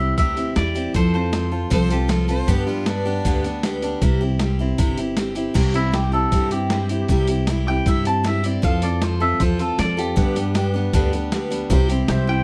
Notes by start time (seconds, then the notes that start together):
Already playing: C2 E5
0.00 C4 E4 G4
0.18 D2 C3 G3 C4 E4 G4 E5, kick, closed hi-hat
0.36 C4 E4 G4, closed hi-hat
0.56 E2 G3 C4 E4 G4 D5, snare, closed hi-hat
0.75 C4 E4 G4, closed hi-hat
0.94 F2 F3 C4 F4 A4 C5, kick, closed hi-hat
1.14 C4 F4 A4 C5
1.32 F3 C4 F4 A4, snare, closed hi-hat
1.52 C4 F4 A4
1.70 C2 F3 C4 F4 A4 C5, kick, closed hi-hat
1.90 C4 F4 G4 A4, closed hi-hat
2.08 F3 C4 F4 A4, snare, closed hi-hat
2.28 C4 F4 A4 C5, closed hi-hat
2.48 G2 D3 G3 B3 D4 G4, kick, closed hi-hat
2.66 G3 B3 D4 F4 G4
2.86 G3 B3 D4 G4, snare, closed hi-hat
3.05 G3 B3 D4 G4
3.25 D2 G2 D3 G3 B3 D4 G4, kick, closed hi-hat
3.44 G3 B3 D4 G4, closed hi-hat
3.63 G3 B3 D4 G4, snare, closed hi-hat
3.82 G3 B3 D4 G4, closed hi-hat
4.02 C2 C3 G3 C4 E4 G4, kick, closed hi-hat
4.21 C4 E4 G4
4.39 G3 C4 E4 G4, snare, closed hi-hat
4.59 C4 E4 G4
4.78 G1 C3 G3 C4 E4 G4, kick, closed hi-hat
4.97 C4 E4 G4, closed hi-hat
5.17 G3 C4 E4 G4, snare, closed hi-hat
5.35 C4 E4 G4, closed hi-hat
5.54 C2 C3 G3 C4 E4 G4, kick, closed hi-hat, crash
5.73 C4 E4 G4, closed hi-hat
5.92 G3 C4 E4 G4, snare, closed hi-hat
6.12 C4 E4 G4 A4
6.32 G2 C3 G3 C4 E4 G4, kick, closed hi-hat
6.51 C4 E4 G4, closed hi-hat
6.70 G3 C4 E4 G4, snare, closed hi-hat
6.89 C4 E4 G4, closed hi-hat
7.08 C2 C3 G3 C4 E4 G4, kick, closed hi-hat
7.27 C4 E4 G4, closed hi-hat
7.47 G3 C4 E4 G4, snare, closed hi-hat
7.68 C4 E4 G4 G5
7.86 G2 C3 G3 C4 E4 G4 E5, kick, closed hi-hat
8.05 C4 E4 G4 A5, closed hi-hat
8.24 G3 C4 E4 G4 E5, snare, closed hi-hat
8.43 C4 E4 G4 D5, closed hi-hat
8.62 F2 F3 C4 F4 A4 F5, kick, closed hi-hat
8.82 C4 F4 A4 D5, closed hi-hat
9.02 F3 C4 F4 A4 C5, snare, closed hi-hat
9.20 C4 F4 A4 E5
9.40 E2 F3 C4 F4 A4 C5, kick, closed hi-hat
9.59 C4 F4 A4, closed hi-hat
9.78 F2 F3 C4 F4 A4 D5, snare, closed hi-hat
9.97 C4 F4 G4 A4, closed hi-hat
10.16 G2 D3 G3 B3 D4 G4, kick, closed hi-hat
10.35 G3 B3 D4 G4, closed hi-hat
10.54 G3 B3 D4 G4, snare, closed hi-hat
10.74 G3 B3 D4 G4
10.93 D2 G2 D3 G3 B3 D4 G4, kick, closed hi-hat
11.13 G3 B3 D4 G4, closed hi-hat
11.32 G3 B3 D4 G4, snare, closed hi-hat
11.50 G3 B3 D4 G4, closed hi-hat
11.69 C2 C3 G3 C4 E4 G4 C5, kick, closed hi-hat
11.89 C4 E4 G4, closed hi-hat
12.08 C2 G3 C4 E4 G4 C5 E5, snare, closed hi-hat
12.27 C4 E4 G4 G5